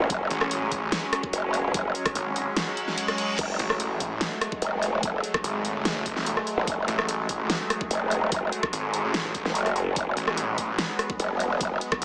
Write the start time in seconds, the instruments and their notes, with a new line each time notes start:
Already playing: supersaw synth F#3 G#3 C#4
0.00 wobble bass A1
0.10 wobble bass F#1, kick, closed hi-hat
0.30 detuned saw bass A1, closed hi-hat
0.41 cross-stick
0.51 closed hi-hat
0.72 kick, closed hi-hat
0.92 snare, closed hi-hat
1.13 cross-stick, closed hi-hat
1.23 kick
1.33 wobble bass F#1, closed hi-hat
1.54 closed hi-hat
1.74 wobble bass F#1, kick, closed hi-hat
1.95 closed hi-hat
2.06 kick, cross-stick, closed hi-hat
2.15 detuned saw bass G#1, closed hi-hat
2.36 closed hi-hat
2.57 snare, closed hi-hat, reverse cymbal
2.77 closed hi-hat
2.88 snare
2.98 closed hi-hat
3.08 cross-stick, closed hi-hat
3.18 closed hi-hat
3.39 wobble bass F#1, supersaw synth A3, kick, closed hi-hat, crash
3.59 detuned saw bass A1, closed hi-hat
3.70 cross-stick
3.80 closed hi-hat
4.00 kick, closed hi-hat
4.21 snare, closed hi-hat
4.41 cross-stick, closed hi-hat
4.52 kick
4.62 wobble bass F#1, closed hi-hat
4.83 closed hi-hat
5.03 wobble bass F#1, kick, closed hi-hat
5.24 closed hi-hat
5.34 kick, cross-stick
5.44 detuned saw bass G#1, closed hi-hat
5.65 closed hi-hat
5.75 detuned saw bass F#1
5.85 snare, closed hi-hat
6.06 kick, closed hi-hat
6.17 detuned saw bass F1, snare
6.26 closed hi-hat
6.37 cross-stick
6.47 closed hi-hat
6.58 wobble bass A1
6.67 wobble bass F#1, kick, closed hi-hat
6.88 detuned saw bass A1, closed hi-hat
6.99 cross-stick
7.09 closed hi-hat
7.29 kick, closed hi-hat
7.50 snare, closed hi-hat
7.70 cross-stick, closed hi-hat
7.81 kick
7.91 wobble bass F#1, closed hi-hat
8.11 closed hi-hat
8.32 wobble bass F#1, kick, closed hi-hat
8.52 closed hi-hat
8.63 kick, cross-stick
8.73 detuned saw bass G#1, closed hi-hat
8.94 closed hi-hat
9.04 detuned saw bass A1
9.14 snare, closed hi-hat
9.35 kick, closed hi-hat
9.45 wobble bass F#1, snare
9.55 closed hi-hat
9.66 cross-stick, closed hi-hat
9.76 closed hi-hat
9.96 wobble bass F#1, supersaw synth B3, kick, closed hi-hat
10.17 detuned saw bass A1, closed hi-hat
10.28 cross-stick
10.37 closed hi-hat
10.58 kick, closed hi-hat
10.79 snare, closed hi-hat
10.99 cross-stick, closed hi-hat
11.10 kick
11.20 wobble bass F#1, closed hi-hat
11.40 closed hi-hat
11.61 wobble bass F#1, kick, closed hi-hat
11.81 closed hi-hat
11.92 kick, cross-stick
12.02 detuned saw bass G#1, closed hi-hat